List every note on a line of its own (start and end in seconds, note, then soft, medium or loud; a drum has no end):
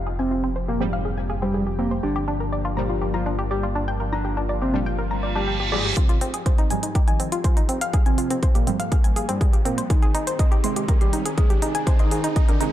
0.00 2.01 F1 medium
0.00 0.77 G#2 medium
0.00 0.77 F3 medium
0.00 5.93 F3 medium
0.00 0.77 G3 medium
0.00 1.99 C4 medium
0.00 3.96 G4 medium
0.07 0.15 G#4 medium
0.19 0.48 C4 loud
0.19 0.27 G#5 medium
0.31 0.43 F4 medium
0.44 0.52 C4 loud
0.56 0.64 C5 medium
0.68 0.82 A#3 medium
0.68 0.73 G4 medium
0.80 2.02 G#2 medium
0.80 2.02 F3 medium
0.80 2.02 G3 medium
0.80 0.89 C4 loud
0.93 0.98 F5 loud
1.05 1.13 G#4 medium
1.17 1.26 G#5 medium
1.30 1.41 G#4 loud
1.42 1.63 G3 medium
1.42 1.50 C4 loud
1.54 1.63 G#4 medium
1.67 1.72 G4 medium
1.79 1.93 A#3 medium
1.79 1.87 C4 loud
1.91 1.99 C5 medium
2.03 5.94 G1 medium
2.03 5.93 A#3 medium
2.03 2.25 D4 medium
2.03 5.93 D4 medium
2.03 2.08 G4 medium
2.16 2.24 G4 loud
2.28 2.40 D4 loud
2.40 2.45 A#4 medium
2.53 2.61 D5 medium
2.65 2.76 F4 medium
2.77 4.71 A#2 medium
2.77 4.71 F3 medium
2.77 4.71 G3 medium
2.77 2.85 A#5 medium
2.90 3.01 F4 medium
3.02 3.07 G4 medium
3.14 3.35 F4 medium
3.14 3.22 A#5 medium
3.26 3.31 D4 loud
3.39 3.44 G4 loud
3.51 3.65 G4 medium
3.51 3.59 D5 medium
3.63 3.75 F4 loud
3.75 3.84 D4 loud
3.88 3.93 G5 loud
4.00 5.95 F4 medium
4.00 4.08 A#4 medium
4.13 4.41 D4 loud
4.13 4.21 A#5 medium
4.25 4.36 G4 medium
4.37 4.45 D4 loud
4.49 4.58 D5 medium
4.62 4.76 C4 medium
4.62 4.67 G4 medium
4.74 5.70 A#2 medium
4.74 5.70 F3 medium
4.74 5.70 G3 medium
4.74 4.82 D4 loud
4.86 4.91 G5 loud
4.98 5.07 A#4 medium
4.98 reverse cymbal medium
5.11 5.19 A#5 medium
5.23 5.31 D5 medium
5.36 5.40 D4 loud
5.36 5.57 G4 medium
5.48 5.53 G5 medium
5.60 5.65 G4 medium
5.72 6.21 G#2 medium
5.72 6.21 F3 medium
5.72 6.21 G3 medium
5.72 5.87 G#4 medium
5.72 5.77 D5 loud
5.85 5.90 G4 medium
5.97 9.86 F3 medium
5.97 7.92 C4 medium
5.97 6.18 C4 medium
5.97 6.02 F4 medium
5.97 9.86 G4 medium
5.97 kick loud
5.97 closed hi-hat medium
5.97 riser medium
6.09 6.19 F1 medium
6.09 6.17 F4 loud
6.09 closed hi-hat soft
6.21 6.31 F1 loud
6.21 6.33 C4 loud
6.21 open hi-hat loud
6.34 6.44 F1 medium
6.34 6.39 G#4 medium
6.34 closed hi-hat medium
6.46 6.54 C5 medium
6.46 kick loud
6.46 closed hi-hat medium
6.58 6.68 F1 medium
6.58 6.70 D#4 medium
6.58 closed hi-hat soft
6.70 6.81 F1 loud
6.70 8.64 G#2 medium
6.70 8.64 F3 medium
6.70 8.64 G3 medium
6.70 6.79 G#5 medium
6.70 open hi-hat loud
6.83 6.93 F1 medium
6.83 6.95 D#4 medium
6.83 closed hi-hat medium
6.95 7.00 G4 medium
6.95 kick loud
6.95 closed hi-hat medium
7.08 7.17 F1 medium
7.08 7.29 D#4 medium
7.08 7.16 G#5 medium
7.08 closed hi-hat soft
7.20 7.30 F1 loud
7.20 7.25 C4 loud
7.20 open hi-hat loud
7.32 7.42 F1 medium
7.32 7.37 F4 loud
7.32 closed hi-hat medium
7.44 7.59 F4 medium
7.44 7.53 C5 medium
7.44 kick loud
7.44 closed hi-hat medium
7.57 7.66 F1 medium
7.57 7.68 D#4 loud
7.57 closed hi-hat soft
7.69 7.79 F1 loud
7.69 7.77 C4 loud
7.69 open hi-hat loud
7.81 7.91 F1 loud
7.81 7.86 F5 loud
7.81 closed hi-hat medium
7.93 9.88 A#3 medium
7.93 8.02 G#4 medium
7.93 kick loud
7.93 closed hi-hat medium
8.06 8.16 F2 medium
8.06 8.34 C4 loud
8.06 8.14 G#5 medium
8.06 closed hi-hat soft
8.18 8.28 F2 loud
8.18 8.30 F4 medium
8.18 open hi-hat loud
8.30 8.40 F2 medium
8.30 8.39 C4 loud
8.30 closed hi-hat medium
8.43 8.51 C5 medium
8.43 kick loud
8.43 closed hi-hat medium
8.55 8.65 F2 medium
8.55 8.69 A#3 medium
8.55 8.60 G4 medium
8.55 closed hi-hat soft
8.67 8.77 F2 medium
8.67 9.89 G#2 medium
8.67 9.89 F3 medium
8.67 9.89 G3 loud
8.67 8.76 C4 loud
8.67 open hi-hat loud
8.79 8.89 F2 medium
8.79 8.85 F5 loud
8.79 closed hi-hat medium
8.92 9.00 G#4 medium
8.92 kick loud
8.92 closed hi-hat medium
9.04 9.14 F1 medium
9.04 9.12 G#5 medium
9.04 closed hi-hat soft
9.16 9.26 D#1 medium
9.16 9.28 G#4 loud
9.16 open hi-hat loud
9.29 9.38 F1 medium
9.29 9.50 G3 loud
9.29 9.37 C4 loud
9.29 closed hi-hat medium
9.41 9.49 G#4 medium
9.41 kick loud
9.41 open hi-hat medium
9.53 9.63 A#1 medium
9.53 9.58 G4 medium
9.53 closed hi-hat soft
9.65 9.76 A#1 loud
9.65 9.80 A#3 medium
9.65 9.74 C4 loud
9.65 open hi-hat loud
9.78 9.88 A#1 medium
9.78 9.86 C5 medium
9.78 closed hi-hat medium
9.90 12.72 D#3 medium
9.90 12.72 C4 medium
9.90 10.12 D#4 loud
9.90 9.95 G#4 medium
9.90 12.72 G#4 medium
9.90 kick loud
9.90 closed hi-hat medium
10.03 10.12 G#1 medium
10.03 10.11 G#4 loud
10.03 closed hi-hat soft
10.15 10.25 G#1 loud
10.15 10.27 D#4 loud
10.15 open hi-hat loud
10.27 10.37 G#1 medium
10.27 10.32 C5 medium
10.27 closed hi-hat medium
10.39 10.48 D#5 medium
10.39 kick loud
10.39 closed hi-hat medium
10.52 10.62 G#1 medium
10.52 10.63 G4 loud
10.52 closed hi-hat soft
10.64 10.74 G#1 loud
10.64 12.58 C3 medium
10.64 12.58 D#3 medium
10.64 12.58 G#3 medium
10.64 10.72 C6 medium
10.64 open hi-hat loud
10.76 10.86 G#1 medium
10.76 10.88 G4 medium
10.76 closed hi-hat medium
10.88 10.94 A#4 medium
10.88 kick loud
10.88 closed hi-hat medium
11.01 11.11 G#1 medium
11.01 11.22 G4 loud
11.01 11.09 C6 medium
11.01 closed hi-hat soft
11.13 11.23 G#1 loud
11.13 11.18 D#4 loud
11.13 open hi-hat loud
11.25 11.35 G#1 medium
11.25 11.30 G#4 loud
11.25 closed hi-hat medium
11.38 11.52 G#4 medium
11.38 11.46 D#5 medium
11.38 kick loud
11.38 closed hi-hat medium
11.50 11.60 G#1 medium
11.50 11.62 G4 loud
11.50 closed hi-hat soft
11.62 11.72 G#1 loud
11.62 11.71 D#4 loud
11.62 open hi-hat loud
11.75 11.84 G#1 medium
11.75 11.80 G#5 loud
11.75 closed hi-hat medium
11.87 11.95 C5 medium
11.87 kick loud
11.87 closed hi-hat medium
11.99 12.09 G#2 medium
11.99 12.28 D#4 loud
11.99 12.08 C6 medium
11.99 closed hi-hat soft
12.11 12.21 G#2 loud
12.11 12.23 G#4 medium
12.11 open hi-hat loud
12.24 12.34 G#2 medium
12.24 12.32 D#4 loud
12.24 closed hi-hat medium
12.36 12.44 D#5 medium
12.36 kick loud
12.36 closed hi-hat medium
12.48 12.58 G#2 medium
12.48 12.63 D4 medium
12.48 12.53 A#4 medium
12.48 closed hi-hat soft
12.60 12.71 G#2 loud
12.60 12.72 C3 medium
12.60 12.72 D#3 medium
12.60 12.72 G#3 medium
12.60 12.69 D#4 loud
12.60 open hi-hat loud